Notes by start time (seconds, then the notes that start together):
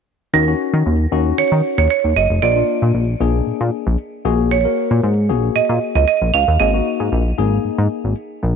0.34 D#2 C#4 D#4 F#4 A#4
0.47 C#4 D#4 F#4
0.74 D#3
0.86 D#2
1.12 D#2 C#4 D#4 F#4
1.38 D#3 C#5
1.52 D#3
1.78 D#2 C#5
1.91 C#5
2.04 D#2
2.16 F#1 D#5
2.30 F1
2.42 A#1 A#3 D4 F4 D5
2.56 A#3 D4 F4
2.82 A#2
2.95 A#1
3.20 A#1 A#3 D4 G#4
3.47 A#2
3.61 A#2
3.87 A#1
4.25 A#1 A#3 F#4 G#4
4.51 C#5
4.65 A#3 F#4 A#4
4.91 A#2
5.03 G#2
5.29 A#1 A#3 F#4 G#4
5.55 A#2 D#5
5.69 A#2
5.95 C#2 D#5
6.08 D#5
6.22 A#1
6.34 C#2 F5
6.48 D#2
6.60 G#1 A#3 D#4 G#4 D#5
6.74 A#3 D#4 F#4
7.00 G#2
7.12 A#1
7.38 G#1 A#3 D#4 G#4
7.65 G#2
7.78 G#2
8.04 G#1
8.43 A#1